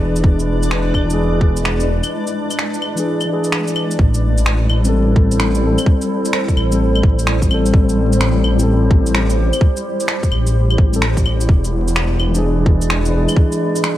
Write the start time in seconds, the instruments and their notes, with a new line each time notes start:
Already playing: detuned saw bass E1, tine electric piano E3 D4 G#4, ambient pad G#3 E4 B4 D5, synth texture D4 D5
0.16 shaker
0.24 detuned saw bass E1, kick
0.39 shaker
0.63 shaker
0.71 finger snap
0.94 detuned saw bass E1, kick, claves
1.05 tine electric piano E3
1.10 tine electric piano D4, shaker
1.14 tine electric piano G#4
1.41 kick
1.57 shaker
1.65 finger snap
1.80 shaker
1.88 detuned saw bass E1
2.04 claves, shaker
2.27 shaker
2.51 claves, shaker
2.59 finger snap
2.74 shaker
2.82 claves
2.95 tine electric piano E3 D4 G#4, shaker
3.21 claves, shaker
3.25 tine electric piano E3 D4
3.33 tine electric piano G#4
3.44 shaker
3.52 finger snap
3.68 shaker
3.76 claves
3.91 shaker
3.99 detuned saw bass A1, ambient pad G3 E4 A4 C5, kick
4.14 shaker
4.38 shaker
4.46 finger snap
4.70 detuned saw bass A1, claves
4.81 tine electric piano G3, shaker
4.85 tine electric piano C4 A4
5.16 kick
5.31 shaker
5.40 finger snap
5.55 shaker
5.59 tine electric piano G3
5.63 detuned saw bass A1, tine electric piano C4 A4
5.78 claves, shaker
5.86 kick
6.01 shaker
6.25 shaker
6.33 finger snap
6.48 kick, shaker
6.57 detuned saw bass A1, claves
6.70 tine electric piano G3 C4, shaker
6.74 tine electric piano A4
6.95 claves
7.03 detuned saw bass A1, kick
7.19 shaker
7.27 finger snap
7.42 kick, shaker
7.46 tine electric piano G3
7.50 tine electric piano C4 A4, claves
7.66 shaker
7.74 detuned saw bass A1, ambient pad G4, kick
7.89 shaker
8.13 shaker
8.21 finger snap
8.44 detuned saw bass A1, claves
8.55 tine electric piano G3 C4
8.59 tine electric piano A4, shaker
8.91 kick
9.06 shaker
9.15 finger snap
9.30 shaker
9.38 detuned saw bass A1
9.53 claves, shaker
9.61 kick
9.77 shaker
10.00 shaker
10.08 finger snap
10.23 kick, shaker
10.32 detuned saw bass A1, claves
10.47 shaker
10.70 claves
10.78 detuned saw bass A1, kick
10.92 tine electric piano G3 C4, shaker
10.96 tine electric piano A4
11.02 finger snap
11.17 kick, shaker
11.26 claves
11.41 shaker
11.49 detuned saw bass E1, ambient pad G#3 B4 D5, kick
11.64 shaker
11.88 shaker
11.96 finger snap
12.19 detuned saw bass E1, claves
12.30 tine electric piano E3
12.34 tine electric piano D4 G#4, shaker
12.66 kick
12.82 shaker
12.90 finger snap
13.05 tine electric piano E3, shaker
13.13 detuned saw bass E1, tine electric piano D4
13.17 tine electric piano G#4
13.29 claves, shaker
13.36 kick
13.52 shaker
13.76 shaker
13.84 finger snap